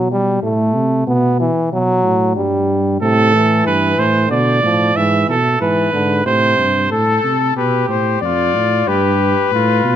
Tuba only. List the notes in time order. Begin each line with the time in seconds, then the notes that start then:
Already playing: B2
0.42 A2
0.75 C3
1.07 B2
1.72 B2
2.03 A2
2.36 G2
3.01 A2
3.66 G2
3.98 A2
4.30 B2
4.64 A2
4.95 G#2
5.28 B2
5.61 G#2
5.93 G#2
6.25 A2
6.58 G2
6.91 A2
7.24 C3
7.56 B2
7.88 A2
8.22 F2
8.54 A2
8.87 G2
9.52 A2
9.84 B2